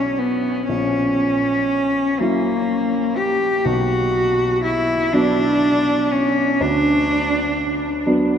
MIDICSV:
0, 0, Header, 1, 3, 480
1, 0, Start_track
1, 0, Key_signature, 2, "minor"
1, 0, Tempo, 1001669
1, 328, Time_signature, 6, 3, 24, 8
1, 1286, Tempo, 977199
1, 4085, End_track
2, 0, Start_track
2, 0, Title_t, "Cello"
2, 0, Program_c, 0, 42
2, 0, Note_on_c, 0, 61, 59
2, 84, Note_on_c, 0, 59, 51
2, 91, Note_off_c, 0, 61, 0
2, 323, Note_off_c, 0, 59, 0
2, 326, Note_on_c, 0, 61, 62
2, 1051, Note_on_c, 0, 58, 59
2, 1058, Note_off_c, 0, 61, 0
2, 1523, Note_on_c, 0, 67, 57
2, 1530, Note_off_c, 0, 58, 0
2, 1762, Note_on_c, 0, 66, 58
2, 1769, Note_off_c, 0, 67, 0
2, 2239, Note_off_c, 0, 66, 0
2, 2242, Note_on_c, 0, 64, 66
2, 2488, Note_on_c, 0, 62, 70
2, 2496, Note_off_c, 0, 64, 0
2, 2970, Note_on_c, 0, 61, 63
2, 2977, Note_off_c, 0, 62, 0
2, 3218, Note_on_c, 0, 62, 68
2, 3225, Note_off_c, 0, 61, 0
2, 3934, Note_off_c, 0, 62, 0
2, 4085, End_track
3, 0, Start_track
3, 0, Title_t, "Grand piano"
3, 0, Program_c, 1, 0
3, 0, Control_c, 1, 64, 127
3, 0, Note_on_c, 1, 54, 28
3, 0, Note_on_c, 1, 62, 26
3, 0, Note_on_c, 1, 66, 29
3, 309, Note_off_c, 1, 54, 0
3, 311, Note_off_c, 1, 62, 0
3, 312, Note_off_c, 1, 66, 0
3, 330, Note_on_c, 1, 34, 35
3, 337, Control_c, 1, 64, 0
3, 407, Control_c, 1, 64, 127
3, 1033, Note_off_c, 1, 34, 0
3, 1054, Note_on_c, 1, 54, 29
3, 1059, Note_on_c, 1, 61, 29
3, 1059, Note_on_c, 1, 64, 31
3, 1741, Note_off_c, 1, 54, 0
3, 1743, Note_off_c, 1, 61, 0
3, 1744, Note_off_c, 1, 64, 0
3, 1761, Note_on_c, 1, 35, 42
3, 1768, Control_c, 1, 64, 0
3, 1858, Control_c, 1, 64, 127
3, 2468, Note_off_c, 1, 35, 0
3, 2489, Note_on_c, 1, 54, 35
3, 2492, Note_on_c, 1, 59, 34
3, 2493, Note_on_c, 1, 62, 37
3, 3193, Note_off_c, 1, 54, 0
3, 3195, Note_off_c, 1, 59, 0
3, 3195, Note_off_c, 1, 62, 0
3, 3213, Note_on_c, 1, 38, 42
3, 3220, Control_c, 1, 64, 0
3, 3297, Control_c, 1, 64, 127
3, 3912, Note_off_c, 1, 38, 0
3, 3928, Note_on_c, 1, 54, 37
3, 3929, Note_on_c, 1, 59, 37
3, 3931, Note_on_c, 1, 62, 40
3, 4085, Note_off_c, 1, 54, 0
3, 4085, Note_off_c, 1, 59, 0
3, 4085, Note_off_c, 1, 62, 0
3, 4085, End_track
0, 0, End_of_file